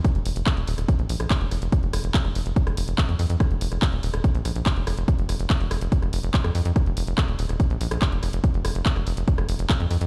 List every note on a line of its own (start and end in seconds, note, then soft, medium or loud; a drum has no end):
0.05 kick loud
0.05 cross-stick soft
0.05 closed hi-hat medium
0.15 0.22 F1 medium
0.15 closed hi-hat soft
0.26 0.32 F1 loud
0.26 open hi-hat loud
0.36 0.43 F1 medium
0.36 closed hi-hat medium
0.46 kick loud
0.46 cross-stick medium
0.46 clap loud
0.46 closed hi-hat medium
0.57 0.64 D#1 medium
0.57 closed hi-hat soft
0.67 0.74 D#1 loud
0.67 open hi-hat loud
0.78 0.85 D#1 medium
0.78 cross-stick soft
0.78 closed hi-hat medium
0.88 kick loud
0.88 closed hi-hat medium
0.99 1.06 A#1 medium
0.99 closed hi-hat soft
1.09 1.16 A#1 loud
1.09 open hi-hat loud
1.20 1.27 A#1 medium
1.20 cross-stick medium
1.20 closed hi-hat medium
1.30 kick loud
1.30 clap loud
1.30 closed hi-hat medium
1.41 1.48 F1 medium
1.41 closed hi-hat soft
1.51 1.58 F1 loud
1.51 cross-stick soft
1.51 open hi-hat loud
1.62 1.69 F1 loud
1.62 closed hi-hat medium
1.72 kick loud
1.72 closed hi-hat medium
1.83 1.90 F1 medium
1.83 closed hi-hat soft
1.93 2.00 F1 loud
1.93 cross-stick medium
1.93 open hi-hat loud
2.04 2.11 F1 loud
2.04 closed hi-hat soft
2.14 kick loud
2.14 clap loud
2.14 closed hi-hat soft
2.25 2.32 F1 medium
2.25 cross-stick soft
2.25 closed hi-hat soft
2.35 2.42 F1 loud
2.35 open hi-hat loud
2.46 2.53 F1 medium
2.46 closed hi-hat medium
2.56 kick loud
2.56 closed hi-hat medium
2.67 2.74 F1 medium
2.67 cross-stick medium
2.67 closed hi-hat soft
2.77 2.84 F1 loud
2.77 open hi-hat loud
2.88 2.94 F1 medium
2.88 closed hi-hat medium
2.98 kick loud
2.98 cross-stick soft
2.98 clap loud
2.98 closed hi-hat medium
3.09 3.15 F2 medium
3.09 closed hi-hat soft
3.19 3.26 F2 loud
3.19 open hi-hat loud
3.30 3.36 F2 medium
3.30 closed hi-hat medium
3.40 kick loud
3.40 cross-stick medium
3.40 closed hi-hat medium
3.51 3.57 F1 medium
3.51 closed hi-hat soft
3.61 3.68 F1 loud
3.61 open hi-hat loud
3.72 3.78 F1 medium
3.72 cross-stick soft
3.72 closed hi-hat soft
3.82 kick loud
3.82 clap loud
3.82 closed hi-hat soft
3.93 3.99 D#1 medium
3.93 closed hi-hat soft
4.03 4.10 D#1 loud
4.03 open hi-hat medium
4.14 4.20 D#1 medium
4.14 cross-stick medium
4.14 closed hi-hat soft
4.24 kick loud
4.24 closed hi-hat medium
4.35 4.41 A#1 medium
4.35 closed hi-hat soft
4.45 4.52 A#1 loud
4.45 cross-stick soft
4.45 open hi-hat loud
4.56 4.62 A#1 medium
4.56 closed hi-hat soft
4.66 kick loud
4.66 clap loud
4.66 closed hi-hat soft
4.77 4.83 F1 medium
4.77 closed hi-hat soft
4.87 4.94 F1 loud
4.87 cross-stick medium
4.87 open hi-hat medium
4.98 5.04 F1 medium
4.98 closed hi-hat medium
5.08 kick loud
5.08 closed hi-hat medium
5.18 5.25 F1 medium
5.18 closed hi-hat soft
5.29 5.36 F1 loud
5.29 cross-stick soft
5.29 open hi-hat loud
5.39 5.46 F1 loud
5.39 closed hi-hat medium
5.50 kick loud
5.50 clap loud
5.50 closed hi-hat medium
5.60 5.67 F1 medium
5.60 closed hi-hat soft
5.71 5.78 F1 medium
5.71 cross-stick medium
5.71 open hi-hat medium
5.81 5.88 F1 medium
5.81 closed hi-hat medium
5.92 kick loud
5.92 closed hi-hat medium
6.02 6.09 F1 medium
6.02 cross-stick soft
6.02 closed hi-hat soft
6.13 6.20 F1 loud
6.13 open hi-hat loud
6.23 6.30 F1 loud
6.23 closed hi-hat soft
6.34 kick loud
6.34 clap loud
6.34 closed hi-hat medium
6.44 6.51 F2 medium
6.44 cross-stick medium
6.44 closed hi-hat soft
6.55 6.62 F2 medium
6.55 open hi-hat medium
6.65 6.72 F2 medium
6.65 closed hi-hat medium
6.76 kick loud
6.76 cross-stick soft
6.76 closed hi-hat medium
6.86 6.93 F1 medium
6.86 closed hi-hat soft
6.97 7.04 F1 loud
6.97 open hi-hat loud
7.07 7.14 F1 medium
7.07 closed hi-hat soft
7.18 kick loud
7.18 cross-stick medium
7.18 clap loud
7.18 closed hi-hat medium
7.28 7.35 D#1 medium
7.28 closed hi-hat soft
7.39 7.46 D#1 medium
7.39 open hi-hat medium
7.49 7.56 D#1 medium
7.49 cross-stick soft
7.49 closed hi-hat soft
7.60 kick loud
7.60 closed hi-hat medium
7.70 7.77 A#1 medium
7.70 closed hi-hat soft
7.81 7.87 A#1 loud
7.81 open hi-hat loud
7.91 7.98 A#1 medium
7.91 cross-stick medium
7.91 closed hi-hat medium
8.02 kick loud
8.02 clap loud
8.02 closed hi-hat medium
8.12 8.19 F1 medium
8.12 closed hi-hat soft
8.23 8.29 F1 medium
8.23 cross-stick soft
8.23 open hi-hat medium
8.33 8.40 F1 medium
8.33 closed hi-hat medium
8.44 kick loud
8.44 closed hi-hat medium
8.54 8.61 F1 medium
8.54 closed hi-hat soft
8.65 8.71 F1 loud
8.65 cross-stick medium
8.65 open hi-hat loud
8.75 8.82 F1 medium
8.75 closed hi-hat medium
8.86 kick loud
8.86 clap loud
8.86 closed hi-hat medium
8.96 9.03 F1 medium
8.96 cross-stick soft
8.96 closed hi-hat soft
9.07 9.13 F1 loud
9.07 open hi-hat medium
9.17 9.24 F1 medium
9.17 closed hi-hat medium
9.28 kick loud
9.28 closed hi-hat medium
9.38 9.45 F1 medium
9.38 cross-stick medium
9.38 closed hi-hat soft
9.49 9.55 F1 loud
9.49 open hi-hat loud
9.59 9.66 F1 medium
9.59 closed hi-hat medium
9.70 kick loud
9.70 cross-stick soft
9.70 clap loud
9.70 closed hi-hat medium
9.80 9.87 F2 medium
9.80 closed hi-hat soft
9.91 9.97 F2 medium
9.91 open hi-hat medium
10.01 10.07 F2 medium
10.01 closed hi-hat medium